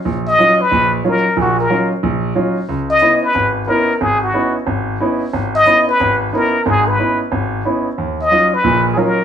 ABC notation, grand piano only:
X:1
M:4/4
L:1/8
Q:"Swing" 1/4=182
K:Dbdor
V:1 name="Grand piano"
B,,,2 [G,DE=F] z B,,,2 [G,DEF] z | [B,,,B,,]2 [G,DE=F] z B,,,2 [G,DEF] z | D,,2 [CDEF] z A,,,2 [CDEF] z | A,,,2 [CDEF] z A,,,2 [CDEF] z |
A,,,2 [CDEF] z A,,,2 [CDEF] z | [A,,,A,,]2 [CDEF] z A,,,2 [CDEF] z | E,,2 [G,DE=F] z [B,,,B,,]2 [G,DEF] z |]